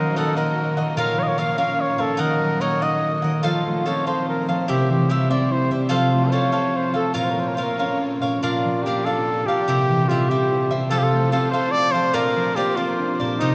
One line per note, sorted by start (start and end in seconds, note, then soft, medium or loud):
0.00 0.75 D#3 medium
0.00 0.82 F#3 medium
0.00 0.16 A#3 medium
0.00 3.40 A#3 medium
0.00 1.57 C#4 medium
0.00 0.15 D#4 medium
0.00 0.97 F#4 medium
0.00 0.16 A#4 medium
0.00 0.17 A#4 medium
0.00 0.16 D#5 medium
0.00 0.96 D#5 medium
0.00 0.16 F#5 medium
0.16 1.37 A#3 medium
0.16 0.36 D#4 medium
0.16 0.35 A4 medium
0.16 0.36 A#4 medium
0.16 0.36 D#5 medium
0.16 0.35 F#5 medium
0.36 2.80 D#4 medium
0.36 0.78 D#4 medium
0.36 0.79 A#4 medium
0.36 0.78 A#4 medium
0.36 0.77 D#5 medium
0.36 0.76 F#5 medium
0.57 1.23 F#4 medium
0.77 1.02 D#3 medium
0.77 0.96 A#4 soft
0.77 0.97 D#5 medium
0.77 0.97 F#5 medium
0.96 1.98 A#2 loud
0.96 1.36 F4 medium
0.96 2.19 F4 medium
0.96 1.38 A#4 medium
0.96 1.21 A#4 loud
0.96 1.37 C#5 medium
0.96 2.19 C#5 medium
0.96 1.38 F5 loud
1.17 2.24 F3 medium
1.17 1.24 C#5 medium
1.23 1.29 D#5 medium
1.28 1.41 C#5 medium
1.38 2.59 A#3 medium
1.38 1.58 F4 medium
1.38 1.57 A#4 medium
1.38 1.57 C#5 medium
1.38 1.58 F5 medium
1.38 1.57 F5 medium
1.57 3.92 C#4 medium
1.57 2.00 F4 medium
1.57 1.98 A#4 medium
1.57 1.98 C#5 medium
1.57 1.97 F5 medium
1.57 1.82 F5 loud
1.79 2.46 F4 medium
1.79 2.02 C#5 medium
1.98 2.24 A#2 medium
1.98 2.22 A4 medium
1.98 2.16 A#4 soft
1.98 2.18 C#5 soft
1.98 2.18 F5 medium
2.17 3.22 D#3 medium
2.17 2.60 D#4 medium
2.17 3.42 F#4 medium
2.17 2.60 A#4 medium
2.17 2.63 A#4 loud
2.17 3.42 D#5 medium
2.17 2.60 D#5 medium
2.17 2.61 F#5 medium
2.40 3.28 F#3 medium
2.60 3.72 A#3 medium
2.60 2.81 D#4 medium
2.60 2.81 A#4 medium
2.60 2.84 C#5 medium
2.60 2.81 D#5 medium
2.60 2.81 F#5 medium
2.81 4.96 D#4 medium
2.81 3.24 D#4 medium
2.81 3.23 A#4 soft
2.81 3.23 D#5 soft
2.81 3.30 D#5 medium
2.81 3.21 F#5 medium
3.03 3.50 F#4 medium
3.22 3.49 D#3 medium
3.22 3.43 A#4 soft
3.22 3.43 D#5 medium
3.22 3.43 F#5 medium
3.42 4.47 F3 medium
3.42 4.66 A3 medium
3.42 3.84 F4 medium
3.42 4.66 F4 medium
3.42 3.65 F4 medium
3.42 3.85 A4 medium
3.42 5.87 C5 medium
3.42 3.86 C5 medium
3.42 3.86 F5 medium
3.66 6.11 A3 medium
3.66 3.88 F4 medium
3.85 5.29 C4 medium
3.85 4.06 F4 medium
3.85 4.06 A4 medium
3.85 4.06 C5 medium
3.85 4.06 C#5 medium
3.85 4.05 F5 medium
4.06 4.96 F4 medium
4.06 4.49 F4 medium
4.06 4.48 A4 medium
4.06 4.27 C5 medium
4.06 4.49 C5 medium
4.06 4.47 F5 medium
4.29 4.47 A#4 medium
4.49 4.73 F3 medium
4.49 4.68 A4 soft
4.49 4.67 C5 soft
4.49 4.68 F5 medium
4.67 5.69 C3 medium
4.67 5.89 G3 medium
4.67 5.89 E4 medium
4.67 5.08 E4 medium
4.67 5.09 G4 medium
4.67 4.89 G4 medium
4.67 5.10 C5 medium
4.67 5.10 E5 medium
4.90 5.75 E3 medium
4.90 5.12 G4 medium
5.09 5.95 G3 medium
5.09 5.29 E4 medium
5.09 5.30 G4 medium
5.09 5.29 C5 medium
5.09 5.30 E5 medium
5.09 5.29 E5 medium
5.29 6.31 C4 medium
5.29 5.72 E4 medium
5.29 5.71 G4 medium
5.29 5.70 C5 medium
5.29 5.53 D5 medium
5.29 5.70 E5 medium
5.51 5.97 E4 medium
5.51 5.71 C5 medium
5.70 5.95 C3 medium
5.70 5.89 G4 soft
5.70 5.88 C5 medium
5.70 5.90 E5 medium
5.89 6.93 F3 medium
5.89 7.15 A3 medium
5.89 6.32 F4 loud
5.89 7.13 F4 medium
5.89 6.11 F4 medium
5.89 6.32 A4 loud
5.89 7.15 A4 medium
5.89 6.31 C5 loud
5.89 6.33 F5 medium
6.11 7.21 A3 medium
6.11 6.33 F4 medium
6.31 7.85 C4 medium
6.31 6.52 F4 medium
6.31 6.52 A4 medium
6.31 6.52 C5 medium
6.31 6.78 C#5 loud
6.31 6.51 F5 medium
6.52 8.00 F4 medium
6.52 7.13 F4 medium
6.52 6.94 A4 soft
6.52 6.93 C5 medium
6.52 6.93 F5 medium
6.75 6.95 C5 medium
6.75 8.41 F5 medium
6.94 7.20 F3 medium
6.94 7.14 A4 medium
6.94 7.14 C5 soft
6.94 7.14 F5 medium
7.14 8.21 A#2 medium
7.14 8.41 A#3 medium
7.14 7.57 F4 medium
7.14 8.41 F4 medium
7.14 7.58 A#4 medium
7.14 7.26 A#4 medium
7.14 8.41 C#5 medium
7.14 7.57 C#5 medium
7.14 7.58 F5 medium
7.24 7.32 C5 medium
7.30 7.41 A#4 medium
7.36 8.48 F3 medium
7.36 7.49 C5 medium
7.48 7.57 A#4 medium
7.55 8.85 A#3 medium
7.55 7.78 F4 medium
7.55 7.78 A#4 medium
7.55 7.65 C5 medium
7.55 7.79 C#5 medium
7.55 7.78 F5 medium
7.63 8.01 A#4 medium
7.79 9.12 C#4 medium
7.79 8.23 F4 soft
7.79 8.22 A#4 medium
7.79 8.22 C#5 medium
7.79 8.20 F5 medium
8.00 9.27 F4 medium
8.21 8.41 A#2 medium
8.21 8.42 A#4 soft
8.21 8.43 C#5 medium
8.21 8.42 F5 medium
8.41 9.46 A#2 medium
8.41 9.67 A#3 medium
8.41 8.85 D4 medium
8.41 8.86 F4 medium
8.41 9.67 F4 medium
8.41 8.86 A#4 medium
8.41 9.67 D5 medium
8.41 8.86 D5 medium
8.41 8.86 F5 medium
8.65 9.73 F3 medium
8.84 11.18 A#3 medium
8.84 9.06 D4 medium
8.84 9.06 G4 medium
8.84 9.07 A#4 medium
8.84 9.05 D5 medium
8.84 9.05 F5 medium
9.05 11.86 D4 medium
9.05 9.49 D4 soft
9.05 9.48 A4 loud
9.05 9.48 D5 medium
9.05 9.47 F5 medium
9.28 9.95 F4 medium
9.46 9.73 A#2 medium
9.46 10.10 G4 loud
9.46 9.68 A#4 soft
9.46 9.69 D5 medium
9.46 9.68 F5 medium
9.67 10.69 C3 medium
9.67 10.91 G3 medium
9.67 10.08 E4 medium
9.67 10.90 E4 medium
9.67 10.09 G4 medium
9.67 13.55 C5 medium
9.67 10.11 C5 medium
9.67 10.10 E5 medium
9.89 10.76 E3 medium
10.09 10.96 G3 medium
10.09 10.29 E4 medium
10.09 10.31 F4 medium
10.09 10.30 G4 medium
10.09 10.30 C5 medium
10.09 10.30 E5 medium
10.29 11.31 C4 medium
10.29 10.72 E4 soft
10.29 10.76 G4 medium
10.29 10.71 G4 medium
10.29 10.72 C5 medium
10.29 10.70 E5 medium
10.50 10.96 E4 medium
10.70 10.96 C3 medium
10.70 10.90 G4 soft
10.70 10.90 C5 medium
10.70 10.91 E5 medium
10.90 11.92 F3 medium
10.90 12.13 A3 medium
10.90 11.32 F4 medium
10.90 12.13 F4 medium
10.90 11.00 A4 loud
10.90 11.32 A4 medium
10.90 11.33 C5 medium
10.90 11.33 F5 loud
10.98 11.05 G4 loud
11.03 11.31 A4 medium
11.12 12.19 A3 medium
11.32 12.77 C4 medium
11.32 11.52 F4 medium
11.32 11.50 A4 medium
11.32 11.53 A4 medium
11.32 11.52 C5 medium
11.32 11.52 F5 medium
11.51 13.55 F4 medium
11.51 11.95 F4 medium
11.51 11.94 A4 medium
11.51 11.73 C5 loud
11.51 11.94 C5 medium
11.51 11.93 F5 medium
11.71 11.93 D5 loud
11.71 13.39 F5 medium
11.92 12.19 F3 medium
11.92 12.14 A4 medium
11.92 12.16 C5 loud
11.92 12.13 C5 medium
11.92 12.14 F5 medium
12.13 13.20 A#2 medium
12.13 13.39 A#3 medium
12.13 13.40 D4 medium
12.13 12.55 F4 loud
12.13 12.56 A#4 medium
12.13 12.57 A#4 loud
12.13 12.57 C5 medium
12.13 12.57 D5 medium
12.36 13.46 F3 medium
12.56 13.55 A#3 medium
12.56 12.77 F4 medium
12.56 12.78 G4 loud
12.56 12.76 A#4 medium
12.56 12.76 C5 medium
12.56 12.76 D5 medium
12.76 13.55 C4 medium
12.76 13.24 F4 medium
12.76 13.20 F4 soft
12.76 13.20 A#4 medium
12.76 13.19 C5 medium
12.76 13.18 D5 medium
12.99 13.55 D4 medium
13.20 13.45 A#2 medium
13.20 13.41 A#4 soft
13.20 13.40 C5 soft
13.20 13.40 D5 medium
13.38 13.55 C3 medium
13.38 13.55 G3 medium
13.38 13.55 D#4 loud
13.38 13.55 D#4 medium
13.38 13.55 G4 medium
13.38 13.55 C5 medium
13.42 13.55 D#5 loud